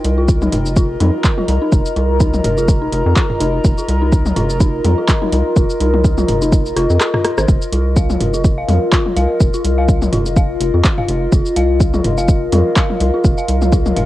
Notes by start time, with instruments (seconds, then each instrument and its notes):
Already playing: ambient pad F4 A#4 D#5 G5
0.04 analog synth bass C2, closed hi-hat
0.18 synth bell F4
0.23 ambient pad A#5
0.28 kick, shaker
0.42 synth bell D#4, high tom, shaker
0.52 analog synth bass F1, closed hi-hat, mid tom
0.66 shaker
0.76 synth bell F4, kick, shaker
1.00 analog synth bass F2, synth bell D#4, closed hi-hat, high tom
1.24 kick, clap, shaker
1.38 synth bell F4, high tom
1.48 analog synth bass C2, closed hi-hat
1.62 synth bell D#4
1.72 analog synth bass F1, kick, shaker
1.86 shaker
1.96 analog synth bass C2, synth bell F4, closed hi-hat
2.20 synth bell D#4, kick, shaker
2.34 high tom, shaker
2.44 analog synth bass F1, closed hi-hat, mid tom
2.58 synth bell F4, shaker
2.68 kick, shaker
2.82 synth bell D#4
2.92 analog synth bass F1, closed hi-hat
3.06 analog synth bass F2
3.16 synth bell F4, kick, clap, shaker
3.30 mid tom
3.40 analog synth bass F1, synth bell D#4, closed hi-hat
3.64 analog synth bass F1, kick, shaker
3.78 synth bell F4, shaker
3.88 analog synth bass C2, closed hi-hat
4.02 synth bell D#4
4.12 kick, shaker
4.26 high tom, shaker
4.36 analog synth bass F1, synth bell F4, closed hi-hat, mid tom
4.50 shaker
4.60 synth bell D#4, kick, shaker
4.84 analog synth bass F2, closed hi-hat, high tom
4.98 synth bell F4
5.09 kick, clap, shaker
5.22 synth bell D#4, high tom
5.32 analog synth bass C2, closed hi-hat
5.57 analog synth bass F1, synth bell F4, kick, shaker
5.70 shaker
5.80 analog synth bass C2, synth bell D#4, closed hi-hat
5.94 high tom
6.05 kick, shaker
6.18 synth bell F4, high tom, shaker
6.28 analog synth bass F1, closed hi-hat, mid tom
6.42 synth bell D#4, shaker
6.53 kick, shaker
6.66 shaker
6.76 analog synth bass F1, synth bell F4, cross-stick, closed hi-hat
6.90 analog synth bass F2, shaker
7.01 synth bell F4, cross-stick, clap, shaker
7.14 synth bell F4, cross-stick, mid tom
7.25 cross-stick, closed hi-hat
7.38 analog synth bass G#1, synth bell C5, cross-stick, shaker
7.49 analog synth bass F1, kick, shaker
7.62 shaker
7.72 analog synth bass C2, synth bell F4, ambient pad F5, closed hi-hat
7.97 synth bell F5, kick, shaker
8.10 high tom, shaker
8.21 analog synth bass F1, closed hi-hat, mid tom
8.34 synth bell F4, shaker
8.45 kick, shaker
8.58 synth bell F5
8.68 analog synth bass F2, closed hi-hat, high tom
8.92 synth bell F4, kick, clap, shaker
9.06 high tom
9.16 analog synth bass C2, synth bell F5, closed hi-hat
9.40 analog synth bass F1, kick, shaker
9.54 synth bell F4, shaker
9.64 analog synth bass C2, closed hi-hat
9.78 synth bell F5
9.88 kick, shaker
10.02 high tom, shaker
10.12 analog synth bass F1, synth bell F4, closed hi-hat, mid tom
10.26 shaker
10.36 synth bell F5, kick, shaker
10.60 analog synth bass F1, closed hi-hat
10.74 analog synth bass F2, synth bell F4
10.84 kick, clap, shaker
10.98 synth bell F5, mid tom
11.08 analog synth bass F1, closed hi-hat
11.32 analog synth bass F1, synth bell F4, kick, shaker
11.46 shaker
11.56 analog synth bass C2, synth bell F5, closed hi-hat
11.80 kick, shaker
11.94 synth bell F4, high tom, shaker
12.04 analog synth bass F1, closed hi-hat, mid tom
12.18 synth bell F5, shaker
12.28 kick, shaker
12.52 analog synth bass F2, synth bell F4, closed hi-hat, high tom
12.76 synth bell F5, kick, clap, shaker
12.90 high tom
13.01 analog synth bass C2, closed hi-hat
13.14 synth bell F4
13.25 analog synth bass F1, kick, shaker
13.38 synth bell F5, shaker
13.48 analog synth bass C2, closed hi-hat
13.62 high tom, shaker
13.72 synth bell F4, kick, shaker
13.86 high tom, shaker
13.96 analog synth bass F1, synth bell F5, closed hi-hat, mid tom